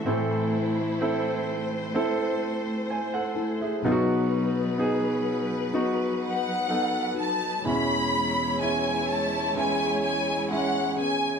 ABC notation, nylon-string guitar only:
X:1
M:4/4
L:1/8
Q:1/4=63
K:E
V:1 name="Nylon-string guitar"
[A,,E,A,=CEA]4 [A,CEA]3 [A,CEA] | [B,,F,B,DF]4 [F,B,DF]3 [B,DF] | [E,B,C]4 [E,B,CG]3 [B,CG] |]